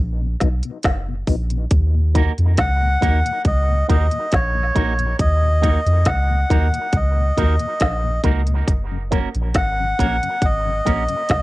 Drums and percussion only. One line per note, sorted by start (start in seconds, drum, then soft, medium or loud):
0.40 kick medium
0.40 snare medium
0.40 closed hi-hat medium
0.63 closed hi-hat soft
0.83 kick loud
0.83 snare loud
0.83 closed hi-hat medium
1.27 kick medium
1.27 open hi-hat medium
1.50 closed hi-hat medium
1.71 kick loud
1.71 closed hi-hat loud
2.15 kick loud
2.15 closed hi-hat medium
2.38 closed hi-hat soft
2.57 kick loud
2.57 snare loud
2.57 closed hi-hat loud
3.02 kick medium
3.02 closed hi-hat medium
3.26 closed hi-hat medium
3.45 kick loud
3.45 closed hi-hat medium
3.89 kick medium
3.89 closed hi-hat medium
4.11 closed hi-hat medium
4.32 kick loud
4.32 snare loud
4.32 closed hi-hat medium
4.76 kick loud
4.76 closed hi-hat medium
4.99 closed hi-hat medium
5.19 kick loud
5.19 closed hi-hat loud
5.63 kick loud
5.63 closed hi-hat medium
5.87 closed hi-hat soft
6.05 kick loud
6.05 snare loud
6.05 closed hi-hat loud
6.50 kick medium
6.50 closed hi-hat medium
6.74 closed hi-hat medium
6.93 kick loud
6.93 closed hi-hat medium
7.38 kick medium
7.38 closed hi-hat medium
7.59 closed hi-hat soft
7.80 kick loud
7.80 snare loud
7.80 closed hi-hat medium
8.24 kick loud
8.24 closed hi-hat medium
8.47 closed hi-hat medium
8.68 kick loud
8.68 closed hi-hat loud
9.12 kick loud
9.12 closed hi-hat medium
9.35 closed hi-hat medium
9.54 kick loud
9.54 snare loud
9.54 closed hi-hat loud
9.99 kick medium
9.99 closed hi-hat medium
10.23 closed hi-hat medium
10.42 kick loud
10.42 closed hi-hat medium
10.87 kick medium
10.87 closed hi-hat medium
11.08 closed hi-hat medium
11.29 kick loud
11.29 snare loud
11.29 closed hi-hat medium